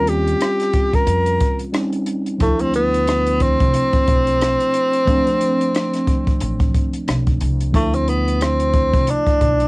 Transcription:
0.00 0.33 D#2 medium
0.00 1.69 G3 medium
0.00 1.69 C4 medium
0.00 1.70 C#4 medium
0.00 1.71 F4 medium
0.00 0.10 A#4 loud
0.07 0.96 G4 medium
0.07 closed hi-hat medium
0.27 closed hi-hat soft
0.41 cross-stick loud
0.41 closed hi-hat medium
0.60 cross-stick soft
0.60 closed hi-hat medium
0.73 kick medium
0.73 closed hi-hat medium
0.93 1.61 A#4 medium
0.93 kick medium
0.93 closed hi-hat soft
1.07 1.36 F2 medium
1.07 closed hi-hat medium
1.26 closed hi-hat soft
1.40 kick medium
1.40 closed hi-hat medium
1.59 closed hi-hat soft
1.73 2.40 G3 medium
1.73 2.40 C4 medium
1.73 2.41 C#4 medium
1.73 2.41 D#4 medium
1.73 cross-stick loud
1.73 closed hi-hat medium
1.93 closed hi-hat soft
2.06 closed hi-hat medium
2.26 closed hi-hat soft
2.38 3.56 D2 loud
2.38 5.02 F3 medium
2.38 5.03 A3 medium
2.38 2.63 A3 medium
2.38 5.04 D4 medium
2.38 kick loud
2.38 closed hi-hat medium
2.43 5.04 E4 medium
2.59 2.75 C4 medium
2.59 closed hi-hat soft
2.74 3.44 B3 loud
2.74 closed hi-hat medium
2.94 closed hi-hat soft
3.07 cross-stick loud
3.07 closed hi-hat medium
3.26 closed hi-hat soft
3.40 7.08 C4 loud
3.40 kick medium
3.40 closed hi-hat medium
3.60 3.72 C2 medium
3.60 kick medium
3.60 closed hi-hat soft
3.74 closed hi-hat medium
3.93 kick medium
3.93 closed hi-hat soft
4.07 4.54 B1 medium
4.07 kick medium
4.07 closed hi-hat medium
4.27 closed hi-hat medium
4.41 cross-stick loud
4.41 closed hi-hat medium
4.60 closed hi-hat soft
4.74 closed hi-hat medium
4.93 closed hi-hat soft
5.05 5.14 E3 medium
5.05 7.70 A3 medium
5.05 7.70 C4 medium
5.05 kick loud
5.05 closed hi-hat medium
5.10 7.70 F3 medium
5.10 7.71 D4 medium
5.27 closed hi-hat soft
5.41 closed hi-hat medium
5.61 closed hi-hat medium
5.75 cross-stick loud
5.75 closed hi-hat medium
5.94 cross-stick soft
5.94 closed hi-hat medium
6.07 kick medium
6.07 closed hi-hat medium
6.27 kick medium
6.27 closed hi-hat soft
6.40 6.70 A1 medium
6.40 closed hi-hat medium
6.60 kick medium
6.60 closed hi-hat soft
6.75 kick medium
6.75 closed hi-hat medium
6.93 closed hi-hat soft
7.08 7.37 B1 medium
7.08 cross-stick loud
7.08 closed hi-hat medium
7.27 kick medium
7.27 closed hi-hat soft
7.41 7.70 C2 medium
7.41 closed hi-hat medium
7.60 closed hi-hat soft
7.72 8.89 D2 loud
7.72 9.68 F3 medium
7.72 9.68 A3 medium
7.72 9.68 D4 medium
7.72 kick loud
7.72 closed hi-hat medium
7.76 7.97 A3 medium
7.76 9.68 E4 medium
7.93 8.11 C4 medium
7.93 closed hi-hat soft
8.08 8.45 B3 medium
8.08 closed hi-hat medium
8.28 closed hi-hat soft
8.41 9.12 C4 medium
8.41 cross-stick loud
8.41 closed hi-hat medium
8.60 closed hi-hat medium
8.74 kick medium
8.74 closed hi-hat medium
8.94 9.06 C2 medium
8.94 kick medium
8.94 closed hi-hat soft
9.07 9.68 D4 medium
9.07 closed hi-hat medium
9.27 kick medium
9.27 closed hi-hat soft
9.41 9.68 B1 medium
9.41 kick medium
9.41 closed hi-hat medium
9.60 closed hi-hat soft

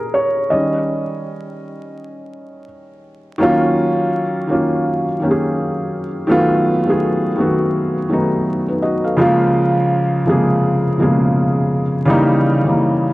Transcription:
0.00 0.53 G#4 medium
0.00 0.15 A#4 medium
0.14 0.51 C#5 loud
0.50 1.02 D#3 medium
0.50 1.02 G3 soft
0.50 1.02 C#4 medium
0.50 2.63 D#5 medium
3.38 4.20 D#3 loud
3.38 4.21 F#3 loud
3.38 4.21 A#3 loud
3.38 4.22 C#4 loud
3.43 4.22 F4 loud
4.47 5.04 D#3 medium
4.47 5.05 F#3 medium
4.47 5.05 A#3 medium
4.47 5.06 C#4 medium
4.52 5.07 F4 medium
5.20 6.01 D#3 medium
5.20 6.02 F#3 medium
5.20 6.02 A#3 medium
5.20 6.03 C#4 medium
5.24 5.30 G4 medium
5.31 6.07 G#4 medium
6.27 6.68 D#3 loud
6.27 6.69 F#3 loud
6.27 6.70 A3 loud
6.27 6.70 B3 loud
6.31 6.71 F4 loud
6.85 7.25 D#3 medium
6.85 7.26 F#3 medium
6.85 7.26 A3 medium
6.85 7.27 B3 medium
6.90 7.27 G#4 medium
7.36 7.93 D#3 medium
7.36 7.94 F#3 medium
7.36 7.94 A3 medium
7.36 7.95 B3 medium
7.41 7.96 F#4 medium
8.09 8.66 D#3 medium
8.09 8.66 F#3 medium
8.09 8.67 A3 medium
8.09 8.68 B3 medium
8.13 8.48 D#4 medium
8.68 8.82 D#4 soft
8.68 8.82 B4 medium
8.82 9.03 F#4 medium
8.82 9.03 D#5 medium
9.04 9.39 A4 medium
9.04 9.38 F5 medium
9.17 9.99 C#3 loud
9.17 9.99 F3 loud
9.17 10.00 G#3 loud
9.17 10.00 A#3 loud
9.21 10.01 F4 loud
10.25 10.33 C3 medium
10.25 10.83 F3 medium
10.25 10.83 G#3 medium
10.25 10.84 A#3 medium
10.29 10.86 C#3 medium
10.29 10.85 G#4 medium
10.98 11.06 B2 medium
10.98 11.80 F3 medium
10.98 11.81 G#3 medium
10.98 11.81 A#3 medium
11.02 11.83 C#3 medium
11.02 11.82 G#4 medium
12.05 12.47 C#3 loud
12.05 12.47 E3 medium
12.05 12.48 G3 loud
12.05 12.49 A#3 medium
12.10 12.49 D#4 loud
12.64 13.04 C#3 medium
12.64 13.04 E3 medium
12.64 13.05 G3 medium
12.64 13.05 A#3 medium
12.69 13.06 D#4 medium

